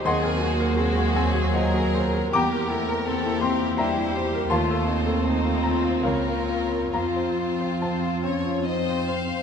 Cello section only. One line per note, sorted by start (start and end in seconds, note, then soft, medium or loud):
0.07 0.41 G#4 medium
0.42 0.78 F#4 medium
0.79 2.34 G#4 medium
2.33 2.70 G4 medium
2.70 3.06 A#4 medium
3.07 3.43 A4 medium
3.42 3.78 G4 medium
3.79 4.15 E4 soft
4.15 4.51 G4 medium
4.51 4.87 F4 medium
4.88 5.24 D#4 soft
5.25 5.62 D#4 soft
5.64 6.03 F4 soft
6.03 6.94 A#4 soft
6.95 9.05 F4 soft